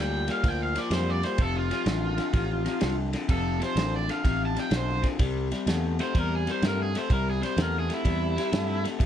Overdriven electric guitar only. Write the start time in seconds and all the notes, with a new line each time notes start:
0.01 G5
0.32 F5
0.48 G5
0.63 F5
0.78 D5
0.93 C5
1.10 D5
1.24 C5
1.42 A4
1.57 F4
3.31 A4
3.63 C5
3.96 D5
4.11 F5
4.45 A5
4.60 G5
4.76 C5
6.01 C5
6.19 A#4
6.35 G#4
6.52 C5
6.67 A#4
6.82 G#4
6.98 C5
7.12 A#4
7.30 G#4
7.44 C5
7.62 A#4
7.79 G#4
7.94 E4